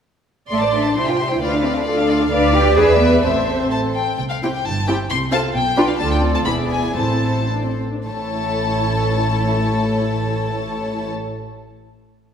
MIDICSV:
0, 0, Header, 1, 6, 480
1, 0, Start_track
1, 0, Tempo, 454890
1, 536, Time_signature, 2, 2, 24, 8
1, 2925, Tempo, 473186
1, 4365, Tempo, 449102
1, 6285, Tempo, 485830
1, 7245, Tempo, 548948
1, 8205, Tempo, 566572
1, 11832, End_track
2, 0, Start_track
2, 0, Title_t, "Violin section"
2, 0, Program_c, 0, 48
2, 528, Note_on_c, 0, 84, 44
2, 646, Note_off_c, 0, 84, 0
2, 646, Note_on_c, 0, 81, 38
2, 774, Note_off_c, 0, 81, 0
2, 775, Note_on_c, 0, 84, 42
2, 895, Note_on_c, 0, 81, 41
2, 899, Note_off_c, 0, 84, 0
2, 1019, Note_off_c, 0, 81, 0
2, 1024, Note_on_c, 0, 84, 48
2, 1135, Note_off_c, 0, 84, 0
2, 1144, Note_on_c, 0, 79, 42
2, 1263, Note_off_c, 0, 79, 0
2, 1264, Note_on_c, 0, 84, 40
2, 1376, Note_on_c, 0, 79, 38
2, 1382, Note_off_c, 0, 84, 0
2, 1497, Note_off_c, 0, 79, 0
2, 1499, Note_on_c, 0, 74, 48
2, 1609, Note_off_c, 0, 74, 0
2, 1619, Note_on_c, 0, 77, 43
2, 1736, Note_on_c, 0, 74, 52
2, 1737, Note_off_c, 0, 77, 0
2, 1845, Note_on_c, 0, 77, 47
2, 1855, Note_off_c, 0, 74, 0
2, 1957, Note_on_c, 0, 74, 49
2, 1968, Note_off_c, 0, 77, 0
2, 2074, Note_off_c, 0, 74, 0
2, 2081, Note_on_c, 0, 77, 58
2, 2201, Note_on_c, 0, 74, 53
2, 2204, Note_off_c, 0, 77, 0
2, 2317, Note_on_c, 0, 77, 56
2, 2322, Note_off_c, 0, 74, 0
2, 2426, Note_off_c, 0, 77, 0
2, 2438, Note_on_c, 0, 77, 54
2, 2888, Note_off_c, 0, 77, 0
2, 2920, Note_on_c, 0, 76, 71
2, 3386, Note_off_c, 0, 76, 0
2, 3398, Note_on_c, 0, 76, 49
2, 3825, Note_off_c, 0, 76, 0
2, 3883, Note_on_c, 0, 81, 55
2, 3964, Note_off_c, 0, 81, 0
2, 4125, Note_on_c, 0, 79, 47
2, 4344, Note_off_c, 0, 79, 0
2, 4357, Note_on_c, 0, 79, 55
2, 4407, Note_off_c, 0, 79, 0
2, 4486, Note_on_c, 0, 77, 45
2, 4572, Note_off_c, 0, 77, 0
2, 4737, Note_on_c, 0, 79, 48
2, 4853, Note_off_c, 0, 79, 0
2, 4856, Note_on_c, 0, 81, 65
2, 5094, Note_on_c, 0, 79, 54
2, 5095, Note_off_c, 0, 81, 0
2, 5179, Note_off_c, 0, 79, 0
2, 5337, Note_on_c, 0, 84, 68
2, 5422, Note_off_c, 0, 84, 0
2, 5571, Note_on_c, 0, 81, 77
2, 5656, Note_off_c, 0, 81, 0
2, 5812, Note_on_c, 0, 79, 73
2, 6160, Note_off_c, 0, 79, 0
2, 6175, Note_on_c, 0, 77, 60
2, 6281, Note_on_c, 0, 81, 71
2, 6291, Note_off_c, 0, 77, 0
2, 6396, Note_off_c, 0, 81, 0
2, 6413, Note_on_c, 0, 79, 66
2, 6492, Note_off_c, 0, 79, 0
2, 6648, Note_on_c, 0, 81, 62
2, 6692, Note_off_c, 0, 81, 0
2, 6751, Note_on_c, 0, 83, 74
2, 6830, Note_off_c, 0, 83, 0
2, 7002, Note_on_c, 0, 80, 58
2, 7245, Note_off_c, 0, 80, 0
2, 7249, Note_on_c, 0, 81, 43
2, 7706, Note_off_c, 0, 81, 0
2, 8209, Note_on_c, 0, 81, 56
2, 10757, Note_off_c, 0, 81, 0
2, 11832, End_track
3, 0, Start_track
3, 0, Title_t, "Violin section"
3, 0, Program_c, 1, 48
3, 538, Note_on_c, 1, 69, 43
3, 538, Note_on_c, 1, 76, 45
3, 651, Note_off_c, 1, 69, 0
3, 651, Note_off_c, 1, 76, 0
3, 653, Note_on_c, 1, 72, 39
3, 655, Note_off_c, 1, 72, 0
3, 655, Note_on_c, 1, 72, 37
3, 778, Note_off_c, 1, 72, 0
3, 787, Note_on_c, 1, 69, 37
3, 787, Note_on_c, 1, 76, 38
3, 905, Note_off_c, 1, 69, 0
3, 905, Note_off_c, 1, 76, 0
3, 913, Note_on_c, 1, 72, 40
3, 914, Note_off_c, 1, 72, 0
3, 914, Note_on_c, 1, 72, 40
3, 1029, Note_off_c, 1, 72, 0
3, 1035, Note_on_c, 1, 76, 39
3, 1037, Note_on_c, 1, 67, 36
3, 1141, Note_off_c, 1, 76, 0
3, 1142, Note_off_c, 1, 67, 0
3, 1144, Note_on_c, 1, 79, 39
3, 1146, Note_on_c, 1, 72, 40
3, 1262, Note_on_c, 1, 67, 40
3, 1262, Note_on_c, 1, 76, 39
3, 1263, Note_off_c, 1, 79, 0
3, 1264, Note_off_c, 1, 72, 0
3, 1381, Note_off_c, 1, 67, 0
3, 1381, Note_off_c, 1, 76, 0
3, 1392, Note_on_c, 1, 79, 40
3, 1393, Note_on_c, 1, 72, 40
3, 1499, Note_on_c, 1, 65, 48
3, 1502, Note_on_c, 1, 77, 50
3, 1505, Note_off_c, 1, 79, 0
3, 1506, Note_off_c, 1, 72, 0
3, 1610, Note_off_c, 1, 65, 0
3, 1611, Note_off_c, 1, 77, 0
3, 1637, Note_on_c, 1, 69, 41
3, 1637, Note_on_c, 1, 74, 41
3, 1743, Note_on_c, 1, 65, 45
3, 1746, Note_off_c, 1, 69, 0
3, 1746, Note_off_c, 1, 74, 0
3, 1746, Note_on_c, 1, 77, 44
3, 1858, Note_off_c, 1, 65, 0
3, 1860, Note_off_c, 1, 77, 0
3, 1860, Note_on_c, 1, 69, 47
3, 1865, Note_on_c, 1, 74, 45
3, 1975, Note_off_c, 1, 69, 0
3, 1978, Note_off_c, 1, 74, 0
3, 1984, Note_on_c, 1, 77, 46
3, 1990, Note_on_c, 1, 65, 49
3, 2089, Note_off_c, 1, 77, 0
3, 2092, Note_off_c, 1, 65, 0
3, 2100, Note_on_c, 1, 69, 51
3, 2100, Note_on_c, 1, 74, 54
3, 2211, Note_on_c, 1, 77, 54
3, 2213, Note_off_c, 1, 69, 0
3, 2213, Note_off_c, 1, 74, 0
3, 2213, Note_on_c, 1, 65, 50
3, 2328, Note_off_c, 1, 65, 0
3, 2328, Note_off_c, 1, 77, 0
3, 2336, Note_on_c, 1, 74, 58
3, 2340, Note_on_c, 1, 69, 61
3, 2443, Note_off_c, 1, 74, 0
3, 2451, Note_off_c, 1, 69, 0
3, 2455, Note_on_c, 1, 71, 73
3, 2456, Note_on_c, 1, 74, 75
3, 2897, Note_off_c, 1, 71, 0
3, 2898, Note_off_c, 1, 74, 0
3, 2924, Note_on_c, 1, 74, 61
3, 2927, Note_on_c, 1, 71, 61
3, 3391, Note_off_c, 1, 74, 0
3, 3392, Note_off_c, 1, 71, 0
3, 3408, Note_on_c, 1, 69, 50
3, 3409, Note_on_c, 1, 72, 50
3, 4144, Note_off_c, 1, 69, 0
3, 4159, Note_off_c, 1, 72, 0
3, 4622, Note_on_c, 1, 79, 44
3, 4624, Note_on_c, 1, 67, 36
3, 4729, Note_off_c, 1, 79, 0
3, 4730, Note_off_c, 1, 67, 0
3, 5092, Note_on_c, 1, 67, 45
3, 5095, Note_on_c, 1, 79, 45
3, 5203, Note_off_c, 1, 67, 0
3, 5205, Note_off_c, 1, 79, 0
3, 5568, Note_on_c, 1, 77, 52
3, 5571, Note_on_c, 1, 69, 52
3, 5678, Note_off_c, 1, 77, 0
3, 5680, Note_off_c, 1, 69, 0
3, 6044, Note_on_c, 1, 74, 50
3, 6045, Note_on_c, 1, 71, 61
3, 6155, Note_off_c, 1, 74, 0
3, 6156, Note_off_c, 1, 71, 0
3, 6287, Note_on_c, 1, 69, 55
3, 6289, Note_on_c, 1, 74, 51
3, 6720, Note_off_c, 1, 69, 0
3, 6721, Note_off_c, 1, 74, 0
3, 6749, Note_on_c, 1, 74, 45
3, 6752, Note_on_c, 1, 68, 45
3, 7234, Note_off_c, 1, 74, 0
3, 7240, Note_on_c, 1, 69, 41
3, 7240, Note_on_c, 1, 72, 37
3, 7246, Note_off_c, 1, 68, 0
3, 7969, Note_off_c, 1, 72, 0
3, 7984, Note_off_c, 1, 69, 0
3, 8211, Note_on_c, 1, 69, 52
3, 8215, Note_on_c, 1, 73, 52
3, 10759, Note_off_c, 1, 69, 0
3, 10762, Note_off_c, 1, 73, 0
3, 11832, End_track
4, 0, Start_track
4, 0, Title_t, "Viola section"
4, 0, Program_c, 2, 48
4, 527, Note_on_c, 2, 74, 61
4, 984, Note_off_c, 2, 74, 0
4, 1027, Note_on_c, 2, 72, 45
4, 1493, Note_on_c, 2, 71, 51
4, 1502, Note_off_c, 2, 72, 0
4, 1960, Note_off_c, 2, 71, 0
4, 1972, Note_on_c, 2, 69, 59
4, 2435, Note_off_c, 2, 69, 0
4, 2444, Note_on_c, 2, 74, 81
4, 2915, Note_off_c, 2, 74, 0
4, 2928, Note_on_c, 2, 71, 68
4, 3402, Note_off_c, 2, 71, 0
4, 3408, Note_on_c, 2, 72, 55
4, 4130, Note_off_c, 2, 72, 0
4, 4612, Note_on_c, 2, 64, 42
4, 4616, Note_on_c, 2, 60, 44
4, 4724, Note_off_c, 2, 64, 0
4, 4726, Note_off_c, 2, 60, 0
4, 5094, Note_on_c, 2, 64, 46
4, 5098, Note_on_c, 2, 60, 46
4, 5204, Note_off_c, 2, 64, 0
4, 5206, Note_off_c, 2, 60, 0
4, 5567, Note_on_c, 2, 60, 48
4, 5570, Note_on_c, 2, 65, 50
4, 5677, Note_off_c, 2, 60, 0
4, 5679, Note_off_c, 2, 65, 0
4, 6053, Note_on_c, 2, 62, 51
4, 6054, Note_on_c, 2, 65, 56
4, 6160, Note_off_c, 2, 62, 0
4, 6161, Note_off_c, 2, 65, 0
4, 6290, Note_on_c, 2, 65, 50
4, 6292, Note_on_c, 2, 62, 54
4, 6503, Note_off_c, 2, 62, 0
4, 6518, Note_on_c, 2, 60, 52
4, 6722, Note_off_c, 2, 65, 0
4, 6753, Note_off_c, 2, 60, 0
4, 6757, Note_on_c, 2, 64, 44
4, 6759, Note_on_c, 2, 59, 50
4, 7239, Note_off_c, 2, 64, 0
4, 7249, Note_off_c, 2, 59, 0
4, 7249, Note_on_c, 2, 60, 43
4, 7250, Note_on_c, 2, 64, 43
4, 7660, Note_off_c, 2, 64, 0
4, 7667, Note_off_c, 2, 60, 0
4, 7716, Note_on_c, 2, 62, 42
4, 7827, Note_off_c, 2, 62, 0
4, 7842, Note_on_c, 2, 60, 38
4, 8085, Note_off_c, 2, 60, 0
4, 8085, Note_on_c, 2, 62, 32
4, 8205, Note_off_c, 2, 62, 0
4, 8209, Note_on_c, 2, 64, 46
4, 8210, Note_on_c, 2, 57, 45
4, 10757, Note_off_c, 2, 64, 0
4, 10758, Note_off_c, 2, 57, 0
4, 11832, End_track
5, 0, Start_track
5, 0, Title_t, "Cello section"
5, 0, Program_c, 3, 48
5, 532, Note_on_c, 3, 57, 57
5, 616, Note_off_c, 3, 57, 0
5, 776, Note_on_c, 3, 62, 66
5, 1016, Note_off_c, 3, 62, 0
5, 1020, Note_on_c, 3, 64, 61
5, 1141, Note_off_c, 3, 64, 0
5, 1143, Note_on_c, 3, 65, 60
5, 1227, Note_off_c, 3, 65, 0
5, 1384, Note_on_c, 3, 64, 61
5, 1499, Note_off_c, 3, 64, 0
5, 1499, Note_on_c, 3, 62, 74
5, 1732, Note_off_c, 3, 62, 0
5, 1735, Note_on_c, 3, 60, 68
5, 1972, Note_off_c, 3, 60, 0
5, 1974, Note_on_c, 3, 62, 74
5, 2427, Note_off_c, 3, 62, 0
5, 2440, Note_on_c, 3, 62, 98
5, 2676, Note_off_c, 3, 62, 0
5, 2684, Note_on_c, 3, 67, 96
5, 2926, Note_off_c, 3, 67, 0
5, 2927, Note_on_c, 3, 68, 96
5, 3162, Note_off_c, 3, 68, 0
5, 3165, Note_on_c, 3, 59, 79
5, 3398, Note_off_c, 3, 59, 0
5, 3403, Note_on_c, 3, 60, 61
5, 4113, Note_off_c, 3, 60, 0
5, 4367, Note_on_c, 3, 48, 47
5, 4752, Note_off_c, 3, 48, 0
5, 4858, Note_on_c, 3, 43, 49
5, 5234, Note_off_c, 3, 43, 0
5, 5331, Note_on_c, 3, 48, 58
5, 5706, Note_off_c, 3, 48, 0
5, 5804, Note_on_c, 3, 47, 59
5, 6183, Note_off_c, 3, 47, 0
5, 6286, Note_on_c, 3, 38, 46
5, 6720, Note_off_c, 3, 38, 0
5, 6749, Note_on_c, 3, 40, 52
5, 7245, Note_off_c, 3, 40, 0
5, 7248, Note_on_c, 3, 45, 42
5, 7988, Note_off_c, 3, 45, 0
5, 8211, Note_on_c, 3, 45, 46
5, 10759, Note_off_c, 3, 45, 0
5, 11832, End_track
6, 0, Start_track
6, 0, Title_t, "Double bass section"
6, 0, Program_c, 4, 48
6, 533, Note_on_c, 4, 33, 44
6, 987, Note_off_c, 4, 33, 0
6, 1021, Note_on_c, 4, 36, 45
6, 1499, Note_on_c, 4, 38, 56
6, 1500, Note_off_c, 4, 36, 0
6, 2425, Note_off_c, 4, 38, 0
6, 2445, Note_on_c, 4, 38, 78
6, 2892, Note_off_c, 4, 38, 0
6, 2927, Note_on_c, 4, 40, 75
6, 3402, Note_off_c, 4, 40, 0
6, 3405, Note_on_c, 4, 33, 62
6, 4157, Note_off_c, 4, 33, 0
6, 4368, Note_on_c, 4, 36, 52
6, 4753, Note_off_c, 4, 36, 0
6, 4858, Note_on_c, 4, 31, 50
6, 5234, Note_off_c, 4, 31, 0
6, 5340, Note_on_c, 4, 36, 59
6, 5711, Note_off_c, 4, 36, 0
6, 5813, Note_on_c, 4, 35, 55
6, 6188, Note_off_c, 4, 35, 0
6, 6288, Note_on_c, 4, 38, 61
6, 6720, Note_off_c, 4, 38, 0
6, 6759, Note_on_c, 4, 28, 53
6, 7249, Note_off_c, 4, 28, 0
6, 7252, Note_on_c, 4, 33, 46
6, 7990, Note_off_c, 4, 33, 0
6, 8208, Note_on_c, 4, 33, 51
6, 10756, Note_off_c, 4, 33, 0
6, 11832, End_track
0, 0, End_of_file